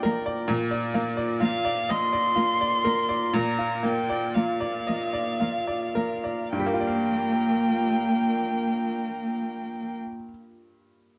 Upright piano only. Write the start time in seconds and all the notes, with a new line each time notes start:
Already playing: G2 A#3 F4 D5 D#5
0.03 A#4
0.26 D5
0.48 A#2
0.71 D5
0.94 A#3
1.17 D5
1.40 F4
1.65 D5
1.89 D#5
2.13 D5
2.35 F4
2.61 D5
2.85 A#4
3.09 D5
3.33 A#2
3.59 F4
3.83 A#3
4.10 D5
4.35 F4
4.61 D5
4.87 D#5
5.13 D5
5.40 F4
5.67 D5
5.95 A#4
6.24 D5
6.52 G2
6.60 G3
6.66 A#3
6.74 F4
6.80 D5
6.87 F5